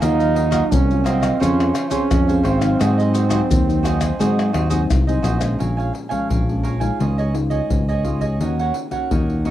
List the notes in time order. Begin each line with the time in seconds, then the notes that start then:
0.00 D#2 D#3 F#3 A#3 D#4 F4 F#4 A#4 D#5 F5, pandeiro, tamborim, maracas, surdo
0.19 A#4 D#5 F5, pandeiro, maracas
0.34 F#4 A#4 D#5 F5, pandeiro
0.50 F#3 A#3 F4 F#4 A#4 D#5 F5, pandeiro, tamborim, maracas, surdo
0.71 C2 A#2 C#4, pandeiro, maracas, surdo
0.90 F#3 A#3 F4, pandeiro, maracas
1.04 C4 F#4 A#4 D#5 F5, pandeiro, tamborim, maracas
1.20 A#4 D#5 F5, pandeiro, tamborim, maracas, surdo
1.40 F2 F3 C#4 F4 G#4 C5 C#5 F5, pandeiro, maracas, surdo
1.60 pandeiro, tamborim, maracas
1.74 F4 C5 C#5 F5, pandeiro, tamborim, maracas
1.90 C4 C#4 F4 G#4 C5 C#5 F5, pandeiro, maracas, surdo
2.11 F2 F3, pandeiro, tamborim, maracas, surdo
2.28 C4 C#4 G#4 C5 C#5 F5, pandeiro, maracas
2.43 G#1 C4 F4 C5 C#5 F5, pandeiro, tamborim
2.59 F#3 C4 D#4 C5 C#5 F5, pandeiro, tamborim, maracas, surdo
2.79 G#2 F#4 G#4 C5 D#5, pandeiro, tamborim, maracas, surdo
2.98 G#4 C5 D#5, pandeiro, maracas
3.13 F#4 G#4 C5 D#5, pandeiro, maracas
3.29 F#3 C4 D#4 F#4 G#4 C5 D#5, pandeiro, tamborim, maracas, surdo
3.49 D#2 D#3, pandeiro, maracas, surdo
3.67 F#3 C4 D#4, pandeiro, maracas
3.83 F#4 G#4 C5 D#5, pandeiro, tamborim, maracas
4.00 G#4 C5 D#5, pandeiro, tamborim, maracas, surdo
4.19 G#2 F#3 G#3 C4 D#4 F#4 G#4 C5 D#5, pandeiro, maracas, surdo
4.39 pandeiro, tamborim, maracas
4.53 D#2 F#4 G#4 C5 D#5, pandeiro, tamborim
4.70 F#3 C4 D#4 F#4 G#4 C5 D#5, pandeiro, maracas, surdo
4.90 C2 D#3, pandeiro, tamborim, maracas, surdo
5.07 F#3 C4 D#4 G#4 C5 D#5, pandeiro, maracas
5.22 A#1 F#4 G#4 C5 D#5, pandeiro, tamborim, maracas
5.39 F3 G#3 C#4 G#4 C5 D#5, pandeiro, tamborim, maracas, surdo
5.59 A#1 A#2 A#4 C#5 F5 G#5, pandeiro, surdo
5.77 C#5 F5 G#5, pandeiro
5.93 muted cavaquinho stroke, pandeiro
6.09 F3 G#3 C#4 C#5 F5 G#5, pandeiro, surdo
6.29 A#1 F2 A#4 C#5 F5 G#5, pandeiro, surdo
6.49 F3 G#3 C#4, pandeiro
6.63 A#4 C#5 F5 G#5, pandeiro
6.80 G#3 D#4 F4 C#5 F5 G#5, pandeiro, surdo
6.99 C#2 C#3 F4 G#4 C#5 D#5, pandeiro, surdo
7.18 G#4 C#5 D#5, pandeiro
7.33 G#3 D#4 F4, muted cavaquinho stroke, pandeiro
7.50 G#4 C#5 D#5, pandeiro, surdo
7.69 C#2 G#2, pandeiro, surdo
7.88 G#4 C#5 D#5, pandeiro
8.04 G#3 D#4 F4 G#4 C#5 D#5, pandeiro
8.21 G#4 C#5 D#5, pandeiro, surdo
8.40 D#2 D#3 A#3 C#4 D#4 F#4 A#4 C#5 F#5, pandeiro, surdo
8.59 A#4 C#5 F#5, pandeiro
8.74 muted cavaquinho stroke, pandeiro
8.90 A#3 C#4 F#4 A#4 C#5 F#5, pandeiro, surdo
9.11 D#2 A#2 D#4 A#4 C#5 F#5, pandeiro, surdo
9.30 pandeiro
9.45 A#3 C#4 D#4 F#4 A#4 C#5 F#5, pandeiro